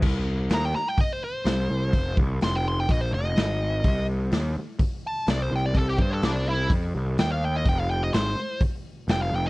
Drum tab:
CC |x-------|--------|--------|--------|
HH |--o-o-o-|o-o-o-o-|o-o-o-o-|o-o-o-o-|
SD |--oo--o-|--o---o-|--o---o-|--o---o-|
BD |o---o---|oo--o---|o---o---|oo--o---|

CC |--------|
HH |o-o-o-o-|
SD |--o---o-|
BD |o---o---|